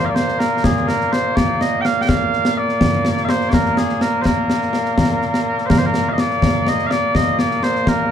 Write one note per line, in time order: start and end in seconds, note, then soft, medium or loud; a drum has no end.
0.00 8.12 A#2 medium
0.00 8.12 A#3 medium
0.05 0.09 F5 medium
0.09 0.15 D5 medium
0.15 0.39 C5 medium
0.15 snare medium
0.28 snare soft
0.39 0.64 A#4 medium
0.39 snare medium
0.64 0.88 G#4 medium
0.64 concert bass drum medium
0.64 snare loud
0.77 snare soft
0.88 1.12 A#4 medium
0.88 snare medium
1.01 snare soft
1.12 1.36 C5 medium
1.12 snare medium
1.36 1.61 D5 loud
1.36 concert bass drum medium
1.36 snare medium
1.61 1.81 D#5 medium
1.61 snare medium
1.81 2.01 F5 loud
1.81 1.85 G5 loud
1.81 snare medium
2.01 2.08 G5 medium
2.08 2.58 F5 loud
2.08 concert bass drum medium
2.08 snare loud
2.33 snare soft
2.45 snare medium
2.58 3.25 D5 loud
2.69 snare soft
2.81 concert bass drum medium
2.81 snare loud
3.05 snare medium
3.17 snare soft
3.25 3.29 F5 medium
3.25 snare medium
3.29 3.50 C5 medium
3.41 snare soft
3.50 3.77 A#4 medium
3.50 3.53 D5 medium
3.50 concert bass drum medium
3.50 snare loud
3.65 snare soft
3.77 4.02 G#4 medium
3.77 snare medium
3.89 snare soft
4.01 4.21 A#4 medium
4.01 snare medium
4.21 4.25 C5 medium
4.25 5.66 A#4 medium
4.25 concert bass drum medium
4.25 snare medium
4.50 snare medium
4.62 snare soft
4.73 snare medium
4.85 snare soft
4.98 concert bass drum medium
4.98 snare medium
5.22 snare soft
5.34 snare medium
5.58 snare soft
5.66 5.70 C5 medium
5.70 5.78 A#4 medium
5.70 concert bass drum medium
5.70 snare loud
5.78 5.86 C5 medium
5.86 6.09 A#4 medium
5.94 snare medium
6.09 6.13 F5 medium
6.13 6.19 D#5 medium
6.18 6.68 D5 loud
6.18 snare medium
6.30 snare soft
6.42 concert bass drum medium
6.42 snare loud
6.67 6.87 D#5 loud
6.67 snare medium
6.79 snare soft
6.87 7.15 D5 loud
6.87 6.91 F5 loud
6.91 snare medium
7.15 7.38 D#5 loud
7.15 concert bass drum medium
7.15 snare medium
7.38 7.63 D5 loud
7.38 snare medium
7.51 snare soft
7.63 7.88 C5 loud
7.63 snare medium
7.75 snare soft
7.87 8.12 A#4 loud
7.87 concert bass drum medium
7.87 snare medium